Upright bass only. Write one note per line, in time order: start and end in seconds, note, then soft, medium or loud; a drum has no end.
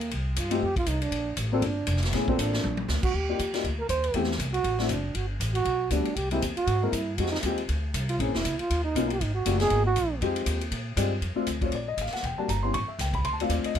0.00 0.11 D#2 loud
0.11 0.36 C2 medium
0.36 0.61 G2 medium
0.62 0.86 F2 medium
0.86 1.11 C2 medium
1.12 1.36 A#1 medium
1.37 1.61 A1 loud
1.62 1.87 G1 medium
1.87 2.12 F1 loud
2.13 2.38 A#1 medium
2.39 2.63 A1 loud
2.63 2.88 A#1 medium
2.88 3.02 D2 loud
3.03 muted upright bass stroke soft
3.14 3.38 D#2 medium
3.39 3.64 F2 medium
3.65 3.88 D2 medium
3.89 4.14 D#2 loud
4.14 4.38 E2 medium
4.39 4.63 C2 medium
4.64 4.88 A1 medium
4.89 5.14 F#1 medium
5.14 5.39 G1 medium
5.40 5.64 A1 loud
5.65 5.90 B1 medium
5.90 6.05 D2 medium
6.07 muted upright bass stroke soft
6.16 6.41 C2 medium
6.41 6.56 E2 medium
6.57 muted upright bass stroke soft
6.67 6.92 G#2 medium
6.92 7.17 G2 medium
7.18 7.43 F2 medium
7.43 7.68 D#2 medium
7.69 7.93 D2 medium
7.94 8.18 C2 loud
8.19 8.28 A#1 medium
8.28 8.35 G#1 medium
8.35 8.44 E1 medium
8.45 8.58 C#2 medium
8.59 muted upright bass stroke soft
8.70 8.94 D#2 medium
8.95 9.20 B1 medium
9.21 9.45 G#1 medium
9.45 9.70 F#1 medium
9.71 9.95 G#1 medium
9.96 10.20 A#1 loud
10.21 10.46 F2 medium
10.46 10.71 D#2 loud
10.71 10.96 A#2 medium
10.97 11.21 G2 loud
11.21 11.35 F2 medium
11.37 muted upright bass stroke soft
11.47 11.71 D2 medium
11.72 11.97 A#1 medium
11.97 12.11 A1 medium
12.13 muted upright bass stroke soft
12.23 12.37 E1 medium
12.38 muted upright bass stroke soft
12.48 12.73 G1 medium
12.74 12.87 A1 medium
12.88 muted upright bass stroke soft
12.99 13.23 C#2 loud
13.24 13.48 D2 medium
13.49 13.63 D#2 medium
13.64 muted upright bass stroke soft
13.75 13.79 F2 medium